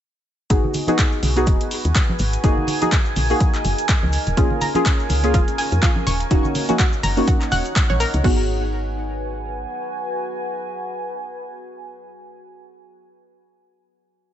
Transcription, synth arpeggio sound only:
4.37 4.41 F4 medium
4.61 4.67 A#5 medium
5.34 5.43 F4 loud
5.58 5.67 G#5 medium
5.82 5.86 F4 medium
6.07 6.13 C#6 medium
6.79 6.88 F#4 loud
7.03 7.12 A#5 medium
7.28 7.31 F#4 medium
7.52 7.55 F#5 loud
7.90 7.94 C#5 medium
8.00 8.09 A#4 loud
8.24 8.47 F#4 loud

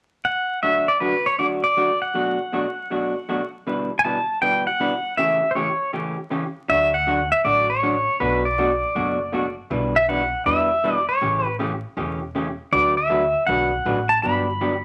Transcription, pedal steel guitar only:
0.25 0.62 F#5 medium
0.63 0.89 E5 loud
0.88 1.00 D5 medium
1.00 1.26 B4 medium
1.26 1.38 C#5 medium
1.39 1.46 D5 medium
1.64 2.03 D5 medium
2.02 3.49 F#5 medium
3.99 4.04 G#5 medium
4.42 4.66 G5 loud
4.67 5.19 F#5 medium
5.17 5.52 E5 medium
5.51 5.56 C5 soft
5.55 5.91 C#5 medium
6.70 6.95 E5 loud
6.94 7.31 F#5 loud
7.32 7.45 E5 medium
7.45 7.70 D5 loud
7.70 8.22 C#5 medium
8.20 8.46 B4 medium
8.45 9.54 D5 medium
9.96 10.09 E5 medium
10.09 10.44 F#5 medium
10.46 10.96 E5 loud
10.96 11.11 D5 loud
11.09 11.46 C#5 medium
11.46 11.56 B4 medium
12.73 12.97 D5 medium
12.97 13.49 E5 medium
13.47 14.12 F#5 loud
14.09 14.22 A5 medium
14.22 14.85 B5 loud

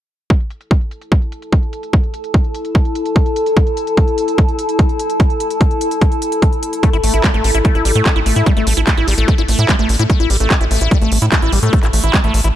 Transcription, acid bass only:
6.83 6.90 A3 medium
6.93 6.97 E4 loud
7.04 7.13 A3 medium
7.14 7.23 E4 loud
7.24 7.31 G3 loud
7.34 7.44 A3 loud
7.44 7.51 A3 medium
7.54 7.59 E4 loud
7.65 7.74 A3 medium
7.75 7.85 E4 loud
7.85 7.92 G3 loud
7.95 8.05 A3 loud
8.06 8.12 A3 medium
8.16 8.20 E4 loud
8.26 8.36 A3 medium
8.36 8.46 E4 loud
8.46 8.53 G3 loud
8.57 8.66 A3 loud
8.67 8.74 A3 medium
8.77 8.81 E4 loud
8.87 8.97 A3 medium
8.97 9.07 E4 loud
9.08 9.14 G3 loud
9.18 9.28 A3 loud
9.38 9.42 E4 loud
9.48 9.58 A3 medium
9.59 9.68 E4 loud
9.69 9.76 G3 loud
9.79 9.89 A3 loud
9.89 9.96 A3 medium
9.99 10.03 E4 loud
10.10 10.19 A3 medium
10.20 10.30 E4 loud
10.30 10.37 G3 loud
10.40 10.50 A3 loud
10.50 10.57 A3 medium
10.61 10.65 E4 loud
10.71 10.81 A3 medium
10.81 10.91 E4 loud
10.91 10.98 G3 loud
11.01 11.11 A3 loud
11.12 11.18 A3 medium
11.22 11.26 E4 loud
11.32 11.42 A3 medium
11.42 11.52 E4 loud
11.52 11.59 G3 loud
11.63 11.72 A3 loud
11.73 11.80 A3 medium
11.83 11.87 E4 loud
11.93 12.03 A3 medium
12.04 12.13 E4 loud
12.14 12.20 G3 loud
12.24 12.34 A3 medium
12.34 12.41 A3 medium
12.44 12.48 E4 loud

